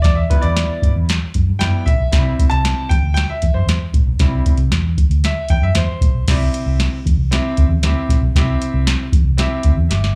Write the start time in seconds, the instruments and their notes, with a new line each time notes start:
0.02 fingered electric bass E2, grand piano D5, kick, snare, closed hi-hat
0.15 grand piano E5
0.30 grand piano G3 B3 E4 B4, kick, closed hi-hat
0.42 fingered electric bass E2, grand piano D5, closed hi-hat
0.57 snare, closed hi-hat
0.82 fingered electric bass G2, kick, closed hi-hat
0.96 fingered electric bass E2
1.09 snare, closed hi-hat
1.34 fingered electric bass F#2, kick, closed hi-hat
1.49 fingered electric bass G2
1.59 fingered electric bass F#2, grand piano G3 B3 E4 G5, snare, closed hi-hat
1.86 fingered electric bass A#1, grand piano E5, kick, closed hi-hat
2.00 fingered electric bass B1
2.12 fingered electric bass C2, grand piano G3 C4 E4, kick, snare, closed hi-hat
2.39 kick, closed hi-hat
2.50 fingered electric bass C2, grand piano A5, closed hi-hat
2.65 snare, closed hi-hat
2.89 fingered electric bass E2, grand piano G5, kick, closed hi-hat
3.03 fingered electric bass D2
3.14 grand piano G5, snare, closed hi-hat
3.30 grand piano E5
3.42 fingered electric bass E2, kick, closed hi-hat
3.54 fingered electric bass F#2, grand piano C5
3.66 fingered electric bass E2, snare, closed hi-hat
3.93 fingered electric bass A#1, kick, closed hi-hat
4.06 fingered electric bass B1
4.19 fingered electric bass C2, grand piano G3 C4 E4, kick, snare, closed hi-hat
4.46 kick, closed hi-hat
4.57 fingered electric bass C2, closed hi-hat
4.70 fingered electric bass E2, snare, closed hi-hat
4.98 kick, closed hi-hat
5.09 fingered electric bass D2, closed hi-hat
5.24 grand piano E5, snare, closed hi-hat
5.49 fingered electric bass E2, grand piano G5, kick, closed hi-hat
5.62 fingered electric bass F#2, grand piano E5
5.75 fingered electric bass E2, grand piano C5, snare, closed hi-hat
6.01 fingered electric bass A#1, kick, closed hi-hat
6.15 fingered electric bass B1
6.28 fingered electric bass C2, grand piano C4 E4 G4 D5, kick, snare, closed hi-hat, crash
6.36 grand piano E5
6.54 closed hi-hat
6.66 fingered electric bass C2
6.80 snare, closed hi-hat
7.05 fingered electric bass E2, kick, closed hi-hat
7.17 fingered electric bass C2
7.31 grand piano C4 E4 G4 E5, snare, closed hi-hat
7.57 fingered electric bass D2, kick, closed hi-hat
7.69 fingered electric bass E2
7.82 fingered electric bass D2, grand piano C4 E4 G4 E5, snare, closed hi-hat
8.09 fingered electric bass A#1, kick, snare, closed hi-hat
8.21 fingered electric bass B1
8.35 fingered electric bass C2, grand piano C4 E4 G4 E5, kick, snare, closed hi-hat
8.62 closed hi-hat
8.74 fingered electric bass C2
8.87 snare, closed hi-hat
9.12 fingered electric bass E2, kick, closed hi-hat
9.24 fingered electric bass C2
9.37 grand piano C4 E4 G4 E5, snare, closed hi-hat
9.63 fingered electric bass D2, kick, closed hi-hat
9.77 fingered electric bass E2
9.89 fingered electric bass G1, grand piano G4 E5, snare, closed hi-hat
10.04 snare